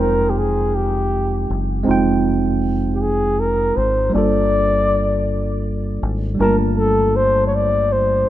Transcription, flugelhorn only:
0.00 A#4
0.30 G4
0.38 G#4
0.75 G4
2.95 G4
3.01 G#4
3.40 A#4
3.77 C5
4.14 D5
6.40 A#4
6.78 A4
7.16 C5
7.47 C#5
7.55 D5
7.92 C5

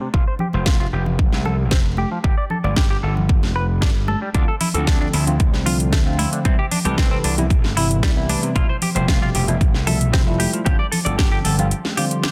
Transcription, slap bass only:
0.14 F1
0.54 F1
0.93 F1
1.33 C2
1.72 F1
2.24 G1
2.64 G1
3.03 G1
3.43 F1
3.82 G1
4.35 D2
4.74 D2
5.13 D2
5.53 C2
5.93 D2
6.45 C2
6.85 C2
7.24 C2
7.64 G1
8.03 C2
8.56 F1
8.96 F1
9.35 F1
9.75 C2
10.14 F1
10.66 G1
11.06 G1
11.45 G1

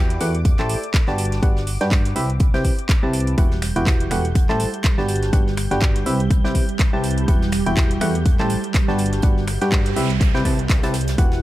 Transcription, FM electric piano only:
Already playing: E3 E4 F#4 G4 B4 G5
0.21 A3 E4 F#4 G4 B4 F#5
0.59 A3 E4 G4 A4 C5 A5
1.08 G3 D4 F#4 G4 B4 A5
1.43 G3 D4 F#4 G4 B4 F#5
1.81 G3 D4 F#4 G4 B4 G5
2.16 C3 C4 E4 G4 B4 E5
2.54 C3 C4 E4 G4 B4 G5
3.03 C3 C4 E4 G4 B4 A5
3.38 E3 E4 F#4 G4 B4 F#5
3.76 E3 E4 F#4 G4 B4 G5
4.11 A3 E4 F#4 G4 B4 F#5
4.49 A3 E4 G4 A4 C5 A5
4.98 G3 D4 F#4 G4 B4 A5
5.33 G3 D4 F#4 G4 B4 F#5
5.71 G3 D4 F#4 G4 B4 G5
6.06 C3 C4 E4 G4 B4 E5
6.44 C3 C4 E4 G4 B4 G5
6.93 C3 C4 E4 G4 B4 A5
7.28 E3 E4 F#4 G4 B4 F#5
7.66 E3 E4 F#4 G4 B4 G5
8.01 A3 E4 F#4 G4 B4 F#5
8.40 A3 E4 G4 A4 C5 A5
8.88 G3 D4 F#4 G4 B4 A5
9.23 G3 D4 F#4 G4 B4 F#5
9.61 G3 D4 F#4 G4 B4 G5
9.96 C3 C4 E4 G4 B4 E5
10.35 C3 C4 E4 G4 B4 G5
10.45 C3 C4 E4 G4 B4 A5
10.83 C3 C4 E4 G4 B4 A5
11.18 E3 E4 F#4 G4 B4 F#5

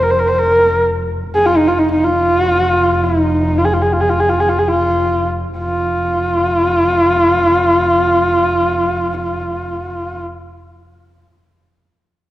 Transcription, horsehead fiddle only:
0.03 A#4
0.10 C5
0.19 A#4
0.28 C5
0.38 A#4
1.35 G#4
1.46 F4
1.57 D#4
1.67 F4
1.79 D#4
1.92 D#4
2.04 F4
3.04 E4
3.21 D#4
3.58 F4
3.65 G#4
3.74 F4
3.82 G#4
3.93 F4
4.01 G#4
4.10 F4
4.21 G#4
4.29 F4
4.40 G#4
4.49 F4
4.59 G#4
4.68 F4
5.58 F4

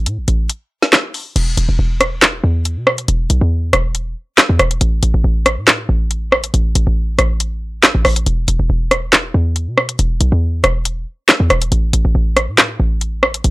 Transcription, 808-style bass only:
0.06 A2
0.18 A1
0.28 A1
1.36 E1
1.57 E1
1.69 E1
1.79 E1
2.44 E2
2.77 B2
3.08 E1
3.30 B1
3.41 E2
3.73 E1
4.49 E2
4.59 E1
4.81 A1
5.03 A1
5.14 A1
5.24 A1
5.57 A2
5.89 A1
6.54 A1
6.75 A1
6.87 A1
7.18 A1
7.95 A1
8.05 A1
8.26 E1
8.48 E1
8.59 E1
8.70 E1
9.34 E2
9.67 B2
9.99 E1
10.21 B1
10.32 E2
10.64 E1
11.40 E2
11.50 E1
11.72 A1
11.93 A1
12.05 A1
12.15 A1
12.48 A2
12.80 A1
13.44 A1

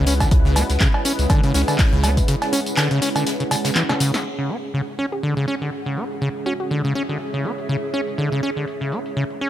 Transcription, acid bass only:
0.07 C#4
0.21 D3
0.45 C#3
0.56 C#4
0.81 C#3
1.05 C#4
1.30 D3
1.44 C#3
1.54 C#4
1.68 D3
1.93 C#3
2.04 C#4
2.28 C#3
2.53 C#4
2.77 D3
2.91 C#3
3.02 C#4
3.16 D3
3.40 C#3
3.51 C#3
3.65 C#3
3.76 E3
3.89 C#3
4.00 C#3
4.14 C#4
4.38 C#3
4.49 C#4
4.74 C#3
4.99 C#4
5.23 D3
5.37 C#3
5.48 C#4
5.61 D3
5.86 C#3
5.97 C#4
6.21 C#3
6.46 C#4
6.71 D3
6.84 C#3
6.95 C#4
7.09 D3
7.34 C#3
7.45 C#4
7.69 C#3
7.94 C#4
8.18 D3
8.32 C#3
8.43 C#4
8.57 D3
8.81 C#3
8.92 C#4
9.17 C#3
9.41 C#4

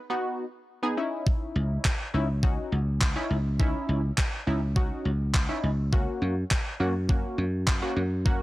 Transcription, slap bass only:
1.56 C#2
2.14 C#2
2.72 C#2
3.30 C#2
3.89 C#2
4.47 C#2
5.05 C#2
5.63 C#2
6.22 F#2
6.80 F#2
7.38 F#2
7.96 F#2

